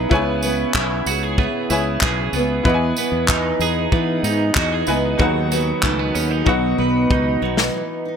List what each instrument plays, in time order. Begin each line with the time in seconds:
Already playing: clean electric guitar B3 D#4 G#4, steel-string acoustic guitar B3 D#4 G#4, upright piano E4 B4 D#5 G#5
0.09 fretless electric bass C#2, steel-string acoustic guitar C#3, clean electric guitar B3, upright piano E4 B4 C#5, kick
0.14 upright piano G#5
0.42 clean electric guitar B3, steel-string acoustic guitar B3, tambourine
0.74 fretless electric bass B1, steel-string acoustic guitar E4, clean electric guitar E4, kick, clap
1.06 fretless electric bass C#2, clean electric guitar F#4, steel-string acoustic guitar G#4, tambourine
1.23 clean electric guitar G#4
1.38 clean electric guitar B3, steel-string acoustic guitar E4, kick
1.70 fretless electric bass C#2, upright piano E4 B4 C#5 G#5, clean electric guitar E4, steel-string acoustic guitar G#4, tambourine
2.01 fretless electric bass B1, steel-string acoustic guitar E4, clean electric guitar G#4, kick, clap
2.33 fretless electric bass C#2, clean electric guitar B3, steel-string acoustic guitar B3, tambourine
2.63 fretless electric bass E2, steel-string acoustic guitar E3, clean electric guitar B3, upright piano E4 B4 D#5, kick
2.68 upright piano F#5
2.74 upright piano G#5
2.96 clean electric guitar B3, steel-string acoustic guitar B3, tambourine
3.12 fretless electric bass E2
3.28 steel-string acoustic guitar D#4, clean electric guitar D#4, kick, clap
3.59 fretless electric bass E2, clean electric guitar G#4, steel-string acoustic guitar G#4, tambourine
3.92 fretless electric bass E3, clean electric guitar B3, steel-string acoustic guitar D#4, kick
4.23 fretless electric bass G#2, clean electric guitar D#4, steel-string acoustic guitar G#4, tambourine
4.55 fretless electric bass E2, steel-string acoustic guitar D#4, clean electric guitar F#4, kick, clap
4.72 clean electric guitar G#4
4.87 fretless electric bass C#2, steel-string acoustic guitar B3, clean electric guitar B3, upright piano E4 B4 D#5 G#5, tambourine
5.18 fretless electric bass D#2, steel-string acoustic guitar D#3, clean electric guitar F#3, upright piano D#4 G#4 B4, kick
5.22 upright piano F#5
5.52 clean electric guitar F#3, steel-string acoustic guitar B3, tambourine
5.83 fretless electric bass C#2, clean electric guitar A3, steel-string acoustic guitar F#4, kick, clap
5.99 clean electric guitar B3
6.15 fretless electric bass D#2, clean electric guitar C#4, steel-string acoustic guitar G#4, tambourine
6.31 clean electric guitar D#4
6.45 fretless electric bass B1, steel-string acoustic guitar B2, clean electric guitar F#3, upright piano D#4 F#4 B4, kick
6.49 upright piano F#5
6.78 fretless electric bass B1, clean electric guitar B3, steel-string acoustic guitar B4
7.10 fretless electric bass C#2, steel-string acoustic guitar D#4, clean electric guitar D#4, kick
7.42 fretless electric bass B1, clean electric guitar F#3, steel-string acoustic guitar B3
7.57 snare
7.74 steel-string acoustic guitar E3
8.05 steel-string acoustic guitar D#4